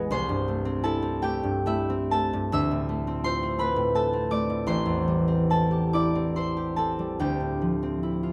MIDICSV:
0, 0, Header, 1, 2, 480
1, 0, Start_track
1, 0, Tempo, 714286
1, 77, Time_signature, 6, 3, 24, 8
1, 558, Tempo, 853485
1, 1518, Tempo, 715990
1, 2958, Tempo, 807537
1, 3438, Tempo, 845070
1, 5047, End_track
2, 0, Start_track
2, 0, Title_t, "Harp"
2, 0, Program_c, 0, 46
2, 0, Note_on_c, 0, 33, 75
2, 0, Note_on_c, 0, 40, 57
2, 0, Note_on_c, 0, 56, 53
2, 0, Note_on_c, 0, 59, 55
2, 0, Note_on_c, 0, 61, 59
2, 0, Note_on_c, 0, 64, 61
2, 0, Note_on_c, 0, 68, 55
2, 0, Note_on_c, 0, 71, 68
2, 0, Note_on_c, 0, 73, 67
2, 0, Note_on_c, 0, 83, 101
2, 0, Note_on_c, 0, 85, 94
2, 71, Note_on_c, 0, 36, 77
2, 78, Note_on_c, 0, 84, 116
2, 82, Note_on_c, 0, 72, 96
2, 95, Note_off_c, 0, 61, 0
2, 96, Note_off_c, 0, 56, 0
2, 97, Note_off_c, 0, 71, 0
2, 97, Note_off_c, 0, 83, 0
2, 99, Note_off_c, 0, 33, 0
2, 99, Note_off_c, 0, 40, 0
2, 99, Note_off_c, 0, 59, 0
2, 99, Note_off_c, 0, 85, 0
2, 100, Note_off_c, 0, 68, 0
2, 102, Note_off_c, 0, 73, 0
2, 194, Note_on_c, 0, 43, 57
2, 322, Note_on_c, 0, 57, 54
2, 438, Note_on_c, 0, 60, 65
2, 553, Note_off_c, 0, 64, 0
2, 560, Note_on_c, 0, 64, 67
2, 562, Note_on_c, 0, 81, 107
2, 569, Note_on_c, 0, 69, 76
2, 660, Note_off_c, 0, 60, 0
2, 667, Note_on_c, 0, 60, 62
2, 770, Note_off_c, 0, 57, 0
2, 776, Note_on_c, 0, 57, 60
2, 779, Note_on_c, 0, 79, 105
2, 785, Note_on_c, 0, 67, 88
2, 891, Note_off_c, 0, 43, 0
2, 898, Note_on_c, 0, 43, 57
2, 1017, Note_off_c, 0, 57, 0
2, 1024, Note_on_c, 0, 57, 65
2, 1025, Note_off_c, 0, 64, 0
2, 1029, Note_on_c, 0, 76, 98
2, 1032, Note_on_c, 0, 64, 72
2, 1151, Note_off_c, 0, 60, 0
2, 1157, Note_on_c, 0, 60, 57
2, 1271, Note_off_c, 0, 57, 0
2, 1273, Note_off_c, 0, 81, 0
2, 1278, Note_on_c, 0, 57, 65
2, 1280, Note_on_c, 0, 81, 103
2, 1283, Note_off_c, 0, 69, 0
2, 1290, Note_on_c, 0, 69, 80
2, 1396, Note_off_c, 0, 43, 0
2, 1403, Note_on_c, 0, 43, 59
2, 1509, Note_on_c, 0, 38, 78
2, 1513, Note_off_c, 0, 76, 0
2, 1515, Note_on_c, 0, 88, 122
2, 1520, Note_on_c, 0, 76, 97
2, 1537, Note_off_c, 0, 36, 0
2, 1537, Note_off_c, 0, 43, 0
2, 1541, Note_off_c, 0, 79, 0
2, 1544, Note_off_c, 0, 67, 0
2, 1634, Note_on_c, 0, 45, 53
2, 1746, Note_off_c, 0, 57, 0
2, 1754, Note_on_c, 0, 57, 57
2, 1869, Note_off_c, 0, 60, 0
2, 1877, Note_on_c, 0, 60, 65
2, 1983, Note_off_c, 0, 84, 0
2, 1988, Note_on_c, 0, 65, 66
2, 1991, Note_on_c, 0, 84, 111
2, 1993, Note_off_c, 0, 72, 0
2, 2001, Note_on_c, 0, 72, 82
2, 2107, Note_off_c, 0, 60, 0
2, 2115, Note_on_c, 0, 60, 60
2, 2214, Note_off_c, 0, 57, 0
2, 2220, Note_on_c, 0, 57, 60
2, 2225, Note_on_c, 0, 83, 102
2, 2231, Note_on_c, 0, 71, 82
2, 2332, Note_off_c, 0, 45, 0
2, 2340, Note_on_c, 0, 45, 59
2, 2457, Note_off_c, 0, 57, 0
2, 2457, Note_off_c, 0, 81, 0
2, 2462, Note_off_c, 0, 69, 0
2, 2464, Note_on_c, 0, 57, 61
2, 2467, Note_on_c, 0, 81, 97
2, 2470, Note_on_c, 0, 69, 80
2, 2579, Note_off_c, 0, 60, 0
2, 2587, Note_on_c, 0, 60, 57
2, 2634, Note_off_c, 0, 83, 0
2, 2698, Note_off_c, 0, 57, 0
2, 2704, Note_on_c, 0, 57, 59
2, 2706, Note_on_c, 0, 86, 97
2, 2713, Note_on_c, 0, 74, 77
2, 2824, Note_off_c, 0, 45, 0
2, 2832, Note_on_c, 0, 45, 50
2, 2940, Note_off_c, 0, 84, 0
2, 2944, Note_on_c, 0, 33, 74
2, 2945, Note_off_c, 0, 72, 0
2, 2950, Note_on_c, 0, 84, 114
2, 2953, Note_on_c, 0, 72, 88
2, 2969, Note_off_c, 0, 65, 0
2, 2971, Note_off_c, 0, 38, 0
2, 2971, Note_off_c, 0, 86, 0
2, 2972, Note_off_c, 0, 71, 0
2, 2974, Note_off_c, 0, 45, 0
2, 2975, Note_off_c, 0, 74, 0
2, 3059, Note_on_c, 0, 40, 53
2, 3191, Note_on_c, 0, 55, 50
2, 3303, Note_off_c, 0, 60, 0
2, 3310, Note_on_c, 0, 60, 57
2, 3435, Note_off_c, 0, 64, 0
2, 3439, Note_off_c, 0, 81, 0
2, 3442, Note_on_c, 0, 64, 54
2, 3444, Note_off_c, 0, 69, 0
2, 3446, Note_on_c, 0, 81, 93
2, 3451, Note_on_c, 0, 69, 70
2, 3560, Note_on_c, 0, 67, 58
2, 3685, Note_off_c, 0, 64, 0
2, 3688, Note_on_c, 0, 86, 112
2, 3691, Note_on_c, 0, 64, 60
2, 3696, Note_on_c, 0, 74, 82
2, 3806, Note_off_c, 0, 60, 0
2, 3813, Note_on_c, 0, 60, 54
2, 3922, Note_off_c, 0, 84, 0
2, 3923, Note_off_c, 0, 64, 0
2, 3928, Note_on_c, 0, 64, 52
2, 3929, Note_off_c, 0, 72, 0
2, 3931, Note_on_c, 0, 84, 82
2, 3936, Note_on_c, 0, 72, 64
2, 3971, Note_off_c, 0, 88, 0
2, 3976, Note_off_c, 0, 76, 0
2, 4041, Note_off_c, 0, 67, 0
2, 4048, Note_on_c, 0, 67, 50
2, 4089, Note_off_c, 0, 86, 0
2, 4153, Note_off_c, 0, 81, 0
2, 4156, Note_off_c, 0, 60, 0
2, 4160, Note_on_c, 0, 81, 84
2, 4162, Note_on_c, 0, 60, 52
2, 4163, Note_off_c, 0, 69, 0
2, 4170, Note_on_c, 0, 69, 66
2, 4281, Note_off_c, 0, 55, 0
2, 4288, Note_on_c, 0, 55, 48
2, 4404, Note_off_c, 0, 67, 0
2, 4405, Note_on_c, 0, 38, 69
2, 4408, Note_on_c, 0, 79, 89
2, 4411, Note_on_c, 0, 67, 70
2, 4412, Note_off_c, 0, 33, 0
2, 4412, Note_off_c, 0, 40, 0
2, 4523, Note_on_c, 0, 45, 42
2, 4643, Note_on_c, 0, 53, 44
2, 4756, Note_off_c, 0, 60, 0
2, 4763, Note_on_c, 0, 60, 51
2, 4872, Note_off_c, 0, 64, 0
2, 4879, Note_on_c, 0, 64, 53
2, 4979, Note_off_c, 0, 57, 0
2, 4993, Note_on_c, 0, 65, 58
2, 5047, Note_off_c, 0, 38, 0
2, 5047, Note_off_c, 0, 45, 0
2, 5047, Note_off_c, 0, 53, 0
2, 5047, Note_off_c, 0, 55, 0
2, 5047, Note_off_c, 0, 60, 0
2, 5047, Note_off_c, 0, 64, 0
2, 5047, Note_off_c, 0, 65, 0
2, 5047, Note_off_c, 0, 67, 0
2, 5047, Note_off_c, 0, 69, 0
2, 5047, Note_off_c, 0, 72, 0
2, 5047, Note_off_c, 0, 74, 0
2, 5047, Note_off_c, 0, 79, 0
2, 5047, Note_off_c, 0, 81, 0
2, 5047, Note_off_c, 0, 84, 0
2, 5047, End_track
0, 0, End_of_file